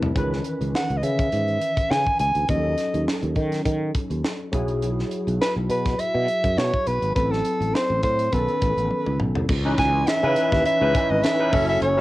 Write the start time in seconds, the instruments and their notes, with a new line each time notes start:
Already playing: fretless electric bass C2, tine electric piano A3 C4 E4 B4
0.03 floor tom
0.15 fretless electric bass C#2, tine electric piano D#3 E3 C#4 B4, kick, closed hi-hat
0.33 snare
0.44 closed hi-hat
0.61 fretless electric bass C#2, closed hi-hat
0.75 soprano saxophone F#5, snare
0.90 fretless electric bass C#2, closed hi-hat
0.97 soprano saxophone D#5
1.03 fretless electric bass C#3, soprano saxophone E5, closed hi-hat
1.19 kick, closed hi-hat
1.32 fretless electric bass G#2, closed hi-hat
1.48 closed hi-hat
1.61 closed hi-hat
1.77 kick, closed hi-hat
1.90 fretless electric bass C#3, soprano saxophone G#5, snare
2.06 kick
2.19 fretless electric bass C#2, soprano saxophone G#5, closed hi-hat
2.35 fretless electric bass D2, closed hi-hat
2.48 fretless electric bass D#2, tine electric piano F3 C#4 D#4 A4, soprano saxophone D#5, kick, closed hi-hat
2.55 tine electric piano F#3
2.78 snare, closed hi-hat
2.94 fretless electric bass D#2, closed hi-hat
3.08 snare
3.23 fretless electric bass D#2, closed hi-hat
3.36 fretless electric bass D#3, kick, closed hi-hat
3.52 snare, closed hi-hat
3.65 fretless electric bass D#3, kick, closed hi-hat
3.95 kick, closed hi-hat
4.10 fretless electric bass D#2, closed hi-hat
4.25 snare
4.52 fretless electric bass B1, tine electric piano F#3 E4 F#4 G#4, kick, closed hi-hat
4.68 closed hi-hat
4.82 closed hi-hat
4.99 snare
5.11 closed hi-hat
5.27 fretless electric bass B1, closed hi-hat
5.41 soprano saxophone B4, snare
5.56 fretless electric bass B1
5.69 fretless electric bass B2, soprano saxophone B4, closed hi-hat
5.85 kick, snare, closed hi-hat
5.99 soprano saxophone E5, muted fretless electric bass stroke, closed hi-hat
6.14 fretless electric bass B2
6.28 closed hi-hat
6.44 fretless electric bass F#2, kick, closed hi-hat
6.57 fretless electric bass B2, soprano saxophone C#5, snare
6.73 kick
6.87 fretless electric bass B1, soprano saxophone B4, closed hi-hat
7.02 fretless electric bass G#1, closed hi-hat
7.15 fretless electric bass A1, tine electric piano F#3 C4 E4 A4, soprano saxophone B4, kick, closed hi-hat
7.31 soprano saxophone A4, snare
7.45 closed hi-hat
7.60 fretless electric bass A1, closed hi-hat
7.75 soprano saxophone C5, snare
7.90 fretless electric bass A1
8.03 fretless electric bass A2, soprano saxophone C5, kick, closed hi-hat
8.19 closed hi-hat
8.31 fretless electric bass B1, tine electric piano D#3 B3 C#4 A4, soprano saxophone B4, kick, closed hi-hat
8.48 closed hi-hat
8.62 fretless electric bass A1, kick, closed hi-hat
8.77 fretless electric bass A1, closed hi-hat
8.91 high tom
9.06 fretless electric bass C#2, mid tom
9.20 fretless electric bass B1, mid tom
9.35 fretless electric bass C2, floor tom
9.49 fretless electric bass C#2, kick, crash
9.65 tine electric piano E3 C#4 D#4 B4
9.78 fretless electric bass C#2, soprano saxophone G#5, kick, snare, closed hi-hat
10.07 soprano saxophone E5, snare, closed hi-hat
10.23 fretless electric bass C#3, tine electric piano E3 C#4 D#4 B4
10.36 closed hi-hat
10.52 fretless electric bass D#2, soprano saxophone E5, kick, snare
10.65 soprano saxophone E5, closed hi-hat
10.81 fretless electric bass C#2, tine electric piano E3 C#4 D#4 B4
10.95 kick, closed hi-hat
11.10 fretless electric bass G#1, soprano saxophone D#5
11.23 soprano saxophone E5, snare, closed hi-hat
11.39 tine electric piano E3 C#4 D#4 B4
11.52 fretless electric bass F#1, tine electric piano F#3 C#4 E4 A4, kick, open hi-hat
11.69 soprano saxophone E5
11.81 fretless electric bass F#1, soprano saxophone C#5, closed hi-hat
11.97 tine electric piano F#3 C#4